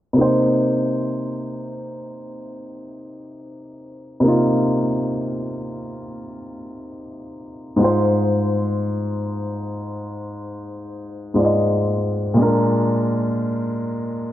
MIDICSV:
0, 0, Header, 1, 2, 480
1, 0, Start_track
1, 0, Key_signature, -3, "minor"
1, 0, Tempo, 1016949
1, 81, Time_signature, 4, 2, 24, 8
1, 6761, End_track
2, 0, Start_track
2, 0, Title_t, "Grand piano"
2, 0, Program_c, 0, 0
2, 63, Note_on_c, 0, 48, 67
2, 77, Note_on_c, 0, 58, 58
2, 89, Note_on_c, 0, 63, 62
2, 101, Note_on_c, 0, 72, 75
2, 179, Control_c, 0, 64, 127
2, 1973, Note_off_c, 0, 48, 0
2, 1980, Note_off_c, 0, 58, 0
2, 1984, Note_on_c, 0, 48, 72
2, 1986, Note_off_c, 0, 63, 0
2, 1992, Note_off_c, 0, 72, 0
2, 1997, Note_on_c, 0, 58, 63
2, 2009, Note_on_c, 0, 63, 64
2, 2022, Note_on_c, 0, 65, 73
2, 3654, Note_off_c, 0, 48, 0
2, 3660, Note_off_c, 0, 58, 0
2, 3664, Note_on_c, 0, 44, 69
2, 3666, Note_off_c, 0, 63, 0
2, 3672, Note_off_c, 0, 65, 0
2, 3677, Note_on_c, 0, 56, 62
2, 3688, Control_c, 0, 64, 0
2, 3689, Note_on_c, 0, 65, 63
2, 3701, Note_on_c, 0, 72, 79
2, 3757, Control_c, 0, 64, 127
2, 5333, Note_off_c, 0, 44, 0
2, 5340, Note_off_c, 0, 56, 0
2, 5346, Note_off_c, 0, 65, 0
2, 5352, Note_off_c, 0, 72, 0
2, 5353, Note_on_c, 0, 44, 53
2, 5360, Note_on_c, 0, 56, 50
2, 5366, Note_on_c, 0, 65, 47
2, 5373, Note_on_c, 0, 74, 45
2, 5402, Note_off_c, 0, 74, 0
2, 5403, Note_on_c, 0, 75, 57
2, 5825, Note_on_c, 0, 46, 70
2, 5831, Note_off_c, 0, 56, 0
2, 5837, Note_off_c, 0, 44, 0
2, 5838, Note_on_c, 0, 56, 66
2, 5843, Note_off_c, 0, 65, 0
2, 5847, Control_c, 0, 64, 0
2, 5851, Note_on_c, 0, 62, 68
2, 5862, Note_off_c, 0, 75, 0
2, 5863, Note_on_c, 0, 70, 78
2, 5928, Control_c, 0, 64, 127
2, 6761, Note_off_c, 0, 46, 0
2, 6761, Note_off_c, 0, 56, 0
2, 6761, Note_off_c, 0, 62, 0
2, 6761, Note_off_c, 0, 70, 0
2, 6761, End_track
0, 0, End_of_file